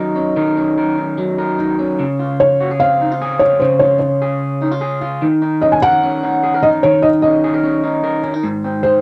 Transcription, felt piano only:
Already playing: D#5
2.40 C#5
2.80 F5
3.39 C#5
3.60 C5
3.79 C#5
3.99 C#5
5.61 D#5
5.72 G#5
5.82 F#5
6.63 D#5
6.83 C#5
7.02 D#5
7.22 D#5
8.83 C5

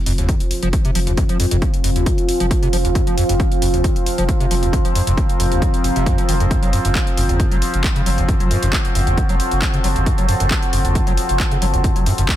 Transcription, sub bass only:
0.06 F1
0.18 F1
0.40 F1
0.63 F1
0.95 F1
1.07 F1
1.29 F1
1.51 F1
1.84 F1
1.96 F1
2.18 F1
2.40 F1
2.73 F1
2.85 F1
3.07 F1
3.29 F1
3.62 F1
3.74 F1
3.96 F1
4.18 F1
4.51 F1
4.62 F1
4.85 F1
5.07 F1
5.40 F1
5.51 F1
5.74 F1
5.96 F1
6.29 F1
6.40 F1
6.62 F#1
6.85 F#1
7.17 F#1
7.29 F#1
7.51 F#1
7.74 F#1
8.06 F#1
8.18 F#1
8.40 F#1
8.62 F#1
8.95 F#1
9.07 F#1
9.29 F#1
9.51 F#1
9.84 F#1
9.96 F#1
10.18 F#1
10.40 F#1
10.73 F#1
10.85 F#1
11.07 F#1
11.29 F#1
11.62 F#1
11.74 F#1
11.96 F#1
12.18 F#1

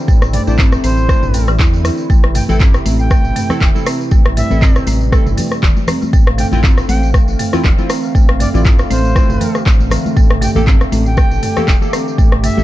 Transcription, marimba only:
0.08 A3
0.34 A3
0.59 C4
0.84 C4
1.09 A3
1.34 A3
1.48 E3
1.60 E4
1.85 E4
2.10 A3
2.35 A3
2.60 C4
2.86 C4
3.11 A3
3.36 A3
3.61 E3
3.86 C4
4.12 A3
4.37 A3
4.62 C4
4.87 C4
5.12 A3
5.38 A3
5.63 E3
5.88 C4
6.13 A3
6.38 A3
6.64 C4
6.89 C4
7.14 A3
7.39 A3
7.64 E3
7.90 C4
8.15 A3
8.40 A3
8.65 C4
8.90 C4
9.16 A3
9.41 A3
9.66 E3
9.91 C4
10.17 A3
10.42 A3
10.67 C4
10.92 C4
11.18 A3
11.43 A3
11.68 E3
11.93 C4
12.18 A3
12.44 A3

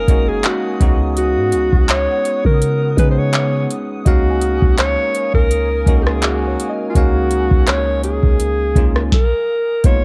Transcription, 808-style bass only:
0.08 F#1
0.80 C#2
1.36 G#2
1.53 C#2
1.73 C#2
2.45 C#3
2.97 C#3
4.06 C#2
4.62 C#2
5.34 C#2
5.86 C#2
6.95 C#2
7.51 C#2
8.23 C#2
8.76 C#2
9.84 G#1

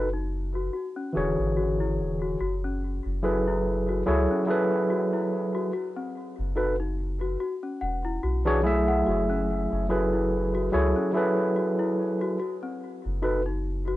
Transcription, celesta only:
Already playing: C4 F#4
0.13 D#4
0.55 F#4
0.73 F#4
0.96 C#4
1.57 F#4
1.80 E4
2.22 F#4
2.41 F#4
2.64 C#4
3.24 F#4
3.48 E4
3.89 F#4
4.07 F#4
4.31 C#4
4.90 F#4
5.13 E4
5.55 F#4
5.73 F#4
5.96 C4
6.57 F#4
6.80 D#4
7.21 F#4
7.40 F#4
7.63 C#4
7.81 F#5
8.05 E4
8.23 F#4
8.46 G#4
8.88 F#5
9.06 F#4
9.30 C#4
9.90 F#4
10.13 E4
10.55 F#4
10.73 F#4
10.96 C#4
11.56 F#4
11.79 E4
12.21 F#4
12.40 F#4
12.63 C4
13.23 F#4
13.46 D#4
13.88 F#4

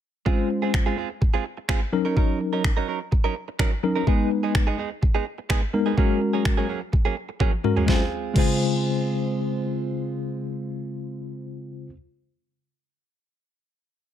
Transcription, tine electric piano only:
0.26 G#3 C#4 F4 C5
1.92 F#3 C#4 D#4 A#4
3.83 F#3 C#4 D#4 A#4
4.07 G#3 B3 D#4 B4
5.73 G#3 B3 D#4 A#4
5.97 G#3 C#4 F#4 A#4
7.64 G#3 C#4 F#4 A#4
7.86 G#3 C#4 F4
7.90 C5
8.34 C#3 G#3 F4 C5

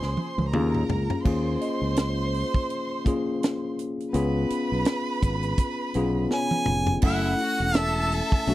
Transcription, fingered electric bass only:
0.02 C#2
0.38 C#2
0.53 D#2
0.89 C#2
1.25 D#2
1.82 C#2
4.14 C#2
4.72 B1
5.22 G#1
5.95 B1
6.68 F1
7.03 F#1
7.60 E1
8.47 B1

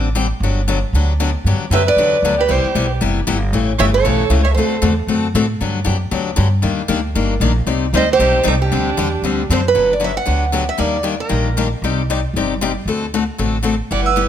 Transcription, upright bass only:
Already playing: A1
0.40 G1
0.93 D2
1.45 G2
1.59 muted upright bass stroke
1.70 F#2
1.96 E2
2.22 D2
2.49 C2
2.65 muted upright bass stroke
2.75 B1
3.01 F#1
3.27 G1
3.53 A1
3.79 G1
4.04 B1
4.30 C#2
4.56 D2
4.82 E2
5.07 F#2
5.34 A2
5.61 G2
5.86 F#2
6.11 D2
6.38 G2
6.64 D#2
6.89 D2
7.15 G1
7.40 A#1
7.66 C2
7.93 D2
8.19 B1
8.46 C2
8.72 D2
8.97 E2
9.22 D2
9.50 F#2
9.75 G1
10.27 D2
10.79 D#2
11.31 A#1
11.82 C2
12.34 G1
12.86 D2
13.39 A1
13.91 G1

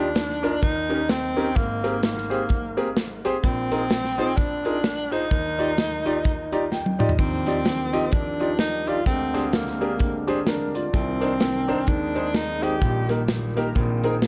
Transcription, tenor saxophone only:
Already playing: D4
0.63 D#4
1.10 C4
1.56 A#3
2.04 A#3
3.43 C4
4.36 D4
5.12 D#4
7.19 C4
8.13 D4
8.60 D#4
8.88 F4
9.07 C4
9.54 A#3
10.94 C4
11.88 D4
12.36 D#4
12.63 G4

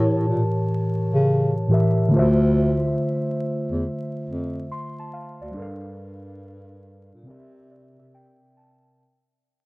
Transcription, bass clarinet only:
Already playing: A2
0.28 A#2
1.14 C#3
2.14 D2
3.71 E2
4.29 F2
5.42 D2
5.57 G2
7.14 A#2
7.29 C3
8.00 C3

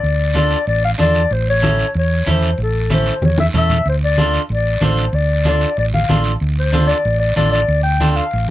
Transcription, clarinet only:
Already playing: D5
0.37 D5
0.68 D5
0.84 F5
1.00 D5
1.33 C5
1.50 C#5
1.98 C#5
2.31 C5
2.63 A4
2.94 C5
3.25 C#5
3.40 E5
3.56 E5
3.89 C5
4.05 D5
4.53 D5
4.84 C5
5.14 D5
5.48 D5
5.79 D5
5.94 F5
6.59 C5
6.87 D5
7.19 D5
7.36 D5
7.52 D5
7.83 G5
8.11 G5
8.16 F5

